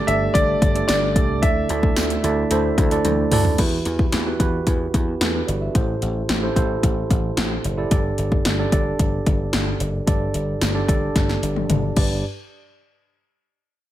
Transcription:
Already playing: G2 A3 D4 G4 A4 D5
0.07 G1 A3 D4 G4 A4 D5 E5, closed hi-hat
0.34 G1 A3 D4 G4 A4 D5, kick, closed hi-hat
0.62 G1, kick, closed hi-hat
0.75 A3 D4 G4 A4 D5, closed hi-hat
0.88 G1 D5, snare, closed hi-hat, tambourine
1.15 C2 A3 D4 G4 A4 D5, kick, closed hi-hat
1.42 D2 D3 A3 D4 E4 A4 D5 E5, kick, closed hi-hat
1.69 D2 A3 D4 E4 A4 D5, closed hi-hat
1.83 kick
1.96 D2, snare, closed hi-hat, tambourine
2.10 closed hi-hat
2.23 D2 A3 D4 E4 A4 D5, closed hi-hat
2.51 D2 A3 D4 E4 A4 C5, closed hi-hat
2.78 D2, kick, closed hi-hat
2.91 A3 D4 E4 A4 D5, closed hi-hat
3.05 D2, closed hi-hat, high tom
3.32 D2 A3 D4 E4 A4 D5, mid tom, open hi-hat
3.45 floor tom
3.58 E2 E3 E4 F#4 G4 B4, kick, closed hi-hat, crash
3.85 E2, closed hi-hat
3.99 kick
4.12 E2, snare, closed hi-hat
4.26 E4 F#4 G4 B4
4.39 E2 E4 F#4 G4 B4, kick, closed hi-hat
4.67 E2, kick, closed hi-hat
4.94 E2, kick, closed hi-hat
5.08 B3 G4
5.21 E2 A4, snare, closed hi-hat
5.34 D4 B4
5.47 G1 F#4 D5, closed hi-hat
5.61 G4 E5
5.74 A1 A2 E4 G4 A4 C5, kick, closed hi-hat
6.02 A1, closed hi-hat
6.29 A1, snare, closed hi-hat
6.43 E4 G4 A4 C5
6.55 A1 E4 G4 A4 C5, kick, closed hi-hat
6.83 A1, kick, closed hi-hat
7.10 A1, kick, closed hi-hat
7.37 A1, snare, closed hi-hat
7.64 F#1, closed hi-hat
7.77 E4 G4 A4 D5
7.91 G1 G2 D4 G4 A4 D5, kick, closed hi-hat
8.18 G1, closed hi-hat
8.32 kick
8.45 G1, snare, closed hi-hat
8.58 D4 G4 A4 D5
8.72 G1 D4 G4 A4 D5, kick, closed hi-hat
8.99 G1, kick, closed hi-hat
9.26 G1, kick, closed hi-hat
9.53 G1, snare, closed hi-hat
9.80 F#1, closed hi-hat
10.07 G1 G2 D4 G4 A4 D5, kick, closed hi-hat
10.34 G1, closed hi-hat
10.61 G1, snare, closed hi-hat, tambourine
10.74 D4 G4 A4 D5
10.88 G1 D4 G4 A4 D5, kick, closed hi-hat
11.16 G1, kick, snare, closed hi-hat
11.29 snare
11.43 G1, closed hi-hat
11.56 high tom
11.69 G1, closed hi-hat, mid tom
11.96 G1 G2 D4 G4 B4 D5, kick, crash

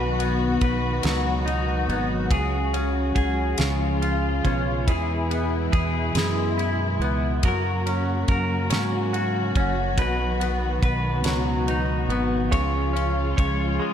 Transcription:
Already playing: B1 B2 D#3 F#3 B3 F#4 B4
0.19 B3, ride
0.61 B1 B4, kick, ride
1.03 C#2 F#3, snare, ride
1.46 D#4, ride
1.88 G#1 B3, ride
2.30 C#2 C#3 G#3 G#4, kick, ride
2.74 C#4, ride
3.15 C#2 G#4, kick, ride
3.58 C#2 C#3 F3 F4, snare, ride
4.02 F4, ride
4.44 B1 C#4, kick, ride
4.87 E2 B2 E3 E4 G#4, kick, ride
5.31 B3, ride
5.72 E2 G#4, kick, ride
6.15 F#2 G#3, snare, ride
6.58 E4, ride
6.99 C#2 B3, ride
7.42 F#2 C#3 F#3 A#3 F#4 A#4, kick, ride
7.86 C#4, ride
8.28 F#2 A#4, kick, ride
8.70 G#2 C#4, snare, ride
9.13 F#4, ride
9.55 F#1 C#4, kick, ride
9.96 B1 B2 D#3 B3 B4, kick, ride
10.40 B3, ride
10.82 B1 B4, kick, ride
11.23 C#2 F#3, snare, ride
11.68 D#4, ride
12.08 G#1 B3, ride
12.51 C#2 C#3 F3 G#3 F4 C#5, kick, ride
12.93 C#4, ride
13.37 C#2 C#5, kick, ride
13.80 G#3

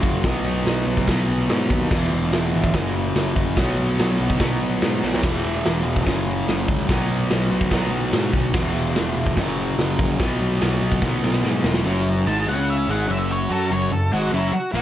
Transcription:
Already playing: F#2 C#3 F#3
0.03 F#1, kick
0.23 B1 B2 F#3, kick, snare, open hi-hat
0.28 B3
0.45 B1
0.65 B1, snare, open hi-hat, tambourine
0.86 B1
0.97 kick
1.07 B1 B2 F#3 B3, kick, snare, open hi-hat
1.28 B1
1.49 G#2, snare, open hi-hat, tambourine
1.70 D#2, kick
1.91 E1 E2 B2, kick, snare, crash
1.95 E3
2.12 E1
2.32 E1, snare, open hi-hat, tambourine
2.54 G#1
2.64 kick
2.74 F#1 F#2 C#3 F#3, kick, snare, open hi-hat
3.15 F#1, snare, open hi-hat, tambourine
3.36 F#1, kick
3.56 B1 B2 F#3 B3, kick, snare, open hi-hat
3.78 B1
3.98 B1, snare, open hi-hat, tambourine
4.20 B1
4.30 kick
4.39 B1 B2 F#3 B3, kick, snare, open hi-hat
4.62 B1
4.82 G#2, snare, open hi-hat, tambourine
5.03 B1, snare
5.14 snare
5.23 E1 E2 B2 E3, kick, snare, crash
5.44 E1
5.65 E1, snare, open hi-hat, tambourine
5.85 E1
5.96 kick
6.06 F#1 F#2 C#3 F#3, kick, snare, open hi-hat
6.47 F#1, snare, open hi-hat, tambourine
6.68 C#2, kick
6.88 B1 B2 F#3 B3, kick, snare, open hi-hat
7.11 B1
7.30 B1, snare, open hi-hat, tambourine
7.51 B1
7.61 kick
7.71 B1 B2 F#3 B3, kick, snare, open hi-hat
7.91 B1
8.12 G#2, snare, open hi-hat, tambourine
8.33 B1, kick
8.54 E1 E2 B2 E3, kick, snare, crash
8.75 E1
8.95 E1, snare, open hi-hat, tambourine
9.16 E1
9.26 kick
9.37 F#1 F#2 C#3, kick, snare, open hi-hat
9.41 F#3
9.78 F#1, snare, open hi-hat, tambourine
9.99 A#1, kick
10.20 B1 B2 F#3 B3, kick, snare, open hi-hat
10.41 B1
10.61 B1, snare, open hi-hat, tambourine
10.82 B1
10.92 kick
11.02 B1 B2 F#3, kick, snare
11.07 B3
11.23 B1, snare
11.33 snare
11.43 G#2, snare, tambourine
11.64 E1, snare
11.74 snare
11.85 F#1 F#2 F#3
12.26 G#1 G#2 G#3 A5
12.47 C#2 C#3 C#4 F#5
12.70 E5
12.88 G#1 G#2 G#3 F#5
13.07 F#1 F#2 F#3 E5
13.32 C#5
13.49 F#2 F#3 F#4 A4
13.70 F#1 F#2 F#3 C#5
13.91 F#1 F#2 A4
14.12 G#1 G#2 G#3 F#4
14.32 F#1 F#2 F#3 E4
14.53 F#4, muted distorted electric guitar stroke, muted picked electric bass stroke
14.72 A#1 A#2 A#3 F#4

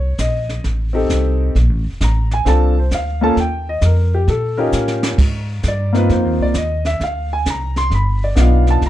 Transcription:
Already playing: C2 C#5
0.18 A#1 D#5, kick, snare, hi-hat pedal
0.49 snare
0.64 A1, brush sweep, kick, snare
0.93 C4 D#4 G4 A4
1.09 C2, kick, snare, hi-hat pedal
1.55 A#1, brush sweep, kick, snare
1.69 A1
1.84 F1
2.01 A1 A#5, kick, snare, hi-hat pedal
2.31 G#5, snare
2.45 C2 C4 D4 F4 A4 A5, brush sweep, kick, snare
2.79 C5
2.91 D2 F5, kick, snare, hi-hat pedal
3.21 A#3 C#4 F4 A4 A5
3.36 D#2 G5, brush sweep, kick, snare
3.69 D#5
3.81 F2 A#4, kick, snare, hi-hat pedal
4.14 G4
4.27 A#2 A4, brush sweep, kick, snare
4.58 C#4 D#4 F4 G4 A#4
4.72 A2, snare, hi-hat pedal
4.88 snare
5.03 snare
5.18 G#2, brush sweep, kick, snare, crash
5.63 G2, kick, snare, hi-hat pedal
5.68 D5
5.93 A#3 C4 D#4 F4, snare
5.97 B4
6.09 F2 C5, brush sweep, kick, snare
6.25 D#2
6.39 C2 D5
6.54 D#2 D#5, kick, snare, hi-hat pedal
6.85 E5, snare
7.00 D2 F5, brush sweep, kick, snare
7.33 G#5
7.46 C2, kick, snare, hi-hat pedal
7.50 A#5
7.76 C6, snare
7.90 G1 B5, brush sweep, kick, snare
8.24 D5
8.35 B1 B3 D4 D#4 F4, kick, snare, hi-hat pedal
8.40 F5
8.67 A5, snare
8.81 C2, brush sweep, kick, snare
8.86 A#5

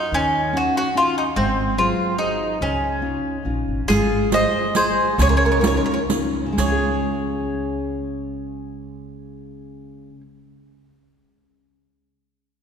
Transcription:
Already playing: D#4
0.12 D#2 D#3 C#4
0.53 C#4 D#4 F#4
0.77 F#4
0.95 C#4 D#4 F4 F#4
1.18 D#4
1.36 G#1 G#3 C4
1.77 F#3 F4 G#4 C5
2.18 D#4 F#4 G#4 C5
2.61 C#2 C#3 C#4
3.01 C#4 D#4 F4
3.45 A#1 C#4 D#4 F4
3.68 G#1
3.88 G#1 G#3 F4 G#4, riq
4.31 F4 G#4 C5 D#5, riq
4.75 F4 G#4 C5, riq
5.18 C#2 C#3 G#4 C#5, riq
5.29 A#4 C#5
5.37 A#4 C#5
5.45 A#4 C#5
5.52 A#4 C#5
5.60 C#4 D#4 F4 A#4 C#5
5.64 A#4 C#5, riq
5.75 A#4 C#5
5.84 A#4 C#5
5.92 A#4 C#5
6.09 C#4 D#4 F4, riq
6.46 C#3
6.52 G#3
6.58 C#2 C#4 G#4 C#5, riq
6.66 F4
6.72 G#4

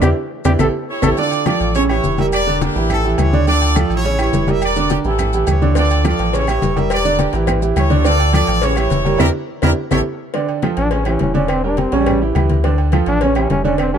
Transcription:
0.02 E2 D4 E4 G4, cowbell, high conga, high timbale, claves, maracas
0.45 E2 D4 E4 G4, cowbell, high conga, high timbale, claves, maracas
0.59 A1 E4 G4 A4, cowbell, high conga, high timbale, claves, maracas
0.90 E4 G4 C#5
1.02 A1 E4 G4 A4, cowbell, high conga, high timbale, claves, maracas
1.17 D3 D4 F4 A4 D5, high conga, low agogo, maracas
1.31 high conga, low agogo, maracas
1.46 F3 F4 A4 D5, high conga, low agogo, claves, maracas
1.60 A1, low agogo, maracas
1.75 C#3 C#4 E4 G4 C#5, high conga, low agogo, maracas
1.89 E3 E4 G4 C#5, high conga, low agogo, claves
2.04 E1, high conga, maracas
2.18 G3 G4 A#4 E5, high conga, low agogo, maracas
2.32 G4 A#4 D5, high conga, low agogo, claves, maracas
2.47 D3 D4 D5, high conga
2.61 A#3 D4 G4, high conga, low agogo, maracas
2.75 A1 E3 E4 G4, high conga, maracas
2.90 C#4 E4 A4, high conga, low conga, low agogo, claves, maracas
3.04 E3 E4 G4, high conga
3.18 D2 E4 G4 C#5, high conga, low timbale, low agogo, claves, maracas
3.33 D3 D4 D5, high conga, maracas
3.47 D3 D4 F4 A4 D5, low agogo, maracas
3.61 high conga, low agogo, maracas
3.76 F3 F4 A4 D5, high conga, low agogo, claves, maracas
3.90 A1 E4 G4 C#5, low agogo, maracas
4.04 C#3 C#4 C#5, high conga, low agogo, maracas
4.19 E3 E4 G4 C#5, high conga, low agogo, claves, maracas
4.33 E1, high conga, low timbale, maracas
4.47 G3 G4 A#4 E5, high conga, low agogo, maracas
4.62 G4 A#4 D5, high conga, low agogo, claves, maracas
4.76 D3 D4 D5, high conga, maracas
4.90 G4, high conga, low agogo, maracas
5.04 A1 E3 C#4 E4 G4 A4, high conga, maracas
5.19 high conga, low conga, low agogo, claves, maracas
5.33 E3 E4 G4, high conga, maracas
5.47 D2 E4 G4 C#5, high conga, low timbale, low agogo, claves, maracas
5.62 D3 D4 D5, high conga, maracas
5.75 D3 D4 F4 A4 D5, cowbell, low agogo, maracas
5.90 high conga, low agogo, maracas
6.05 F3 F4 A4 D5, cowbell, high conga, low agogo, claves, maracas
6.19 A1, cowbell, low agogo, maracas
6.33 C#3 C#4 E4 G4 C#5, cowbell, high conga, low agogo, maracas
6.47 E3 E4 G4 C#5, cowbell, high conga, low agogo, claves, maracas
6.62 E1, cowbell, high conga, low timbale, maracas
6.76 G3 G4 A#4 E5, high conga, low agogo, maracas
6.90 G4 A#4 D5, cowbell, high conga, low agogo, claves, maracas
7.05 D3 D4 D5, high conga, maracas
7.19 G4, cowbell, high conga, low agogo, maracas
7.33 A1 E3 E4 G4, cowbell, high conga, maracas
7.47 cowbell, high conga, low conga, low agogo, claves, maracas
7.62 E3 E4 G4, high conga, maracas
7.76 D2 E4 G4 C#5, cowbell, high conga, low timbale, low agogo, claves, maracas
7.90 D3 D4 D5, cowbell, high conga, maracas
8.05 D3 D4 F4 A4 D5, cowbell, high conga, low agogo, maracas
8.20 high conga, low agogo, maracas
8.33 F3 F4 A4 D5, cowbell, high conga, low agogo, claves, maracas
8.47 A1, cowbell, low agogo, maracas
8.62 C#3 C#4 E4 G4 C#5, cowbell, high conga, low agogo, maracas
8.76 E3 E4 G4 C#5, cowbell, high conga, low agogo, claves, maracas
8.90 E1, cowbell, high conga, maracas
9.05 G3 G4 A#4, high conga, low agogo, maracas
9.19 E2 D4 E4 G4 A#4, cowbell, high conga, high timbale, claves, maracas
9.62 E2 D4 E4 G4 A#4, cowbell, high conga, high timbale, claves, maracas
9.91 A1 E4 G4 A4 C#5, cowbell, high conga, high timbale, claves, maracas
10.34 D3 D4 D5, cowbell, high conga, low agogo
10.49 high conga, low agogo
10.62 F3 F4 A4, cowbell, high conga, low agogo, claves
10.77 A1 D4, cowbell, low agogo
10.91 C#3 C#4 C#5, cowbell, high conga, low agogo
11.05 E3 C#4 E4 G4, cowbell, high conga, low agogo, claves
11.19 E1 C#4, cowbell, high conga, low timbale
11.34 D3 C#4 D4 D5, high conga, low agogo
11.48 C4, cowbell, high conga, low agogo, claves
11.64 G3 D4 G4 A#4, high conga
11.77 C4, cowbell, high conga, low agogo
11.92 A1 C#3 G3 C#4 C#5, cowbell, high conga
12.06 cowbell, high conga, low conga, low agogo, claves
12.22 E3 E4 G4, high conga
12.35 D2 E3 E4 G4, cowbell, high conga, low timbale, low agogo, claves
12.50 cowbell, high conga
12.64 D3 D4 D5, cowbell, high conga, low agogo
12.78 high conga, low agogo
12.92 F3 F4 A4, cowbell, high conga, low agogo, claves
13.06 A1 D4, cowbell, low agogo
13.21 C#3 C#4 C#5, cowbell, high conga, low agogo
13.35 E3 C#4 E4 G4, cowbell, high conga, low agogo, claves
13.50 E1 C#4, cowbell, high conga, low timbale
13.64 D3 C#4 D4 D5, high conga, low agogo
13.78 C4, cowbell, high conga, low agogo, claves
13.93 G3 D4 G4 A#4, high conga

